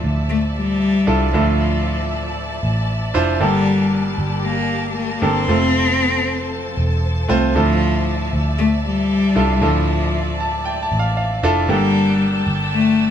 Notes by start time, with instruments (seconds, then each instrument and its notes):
Already playing: grand piano A2 D4 E4 F4 A4, string section F3 D5 E5 A5
0.04 picked electric bass D2
0.30 cello A3
0.57 cello G3
1.07 picked electric bass C2, grand piano D4 E4 F4 A4
1.33 picked electric bass D2, grand piano A2 D4 E4 F4 A4, cello F3
2.63 picked electric bass A1
3.14 picked electric bass F1, grand piano D4 E4 F4 C5
3.40 picked electric bass G1, grand piano G2 D3 A#3 D4 G4 A4, cello G3, string section A#3 G4
4.18 picked electric bass G1
4.44 cello A#3
4.96 cello A#3
5.22 picked electric bass G1, grand piano A#3 D4 G4 A4, cello C4
5.48 picked electric bass F1, grand piano C3 A3 C4 F4 A4, string section F3 A4 C5
6.77 picked electric bass E1
7.28 picked electric bass C2, grand piano A3 C4 F4 C5
7.55 picked electric bass D2, grand piano A2 D4 E4 F4 A4, cello F3, string section D5 E5
8.33 picked electric bass D2
8.59 cello A3
8.85 cello G3
9.35 picked electric bass C2, grand piano D4 E4 F4 A4
9.61 picked electric bass D2, grand piano A2 D4 E4 F4 A4, cello F3
10.40 grand piano A5
10.65 grand piano G5
10.83 grand piano A5
10.92 picked electric bass A1
10.99 grand piano F5
11.17 grand piano F5
11.43 picked electric bass F1, grand piano D4 E4 F4 A4 E5
11.69 picked electric bass G1, grand piano G2 D3 A#3 D4 G4 A4, cello G3, string section G5 A5
12.47 picked electric bass G1
12.73 cello A3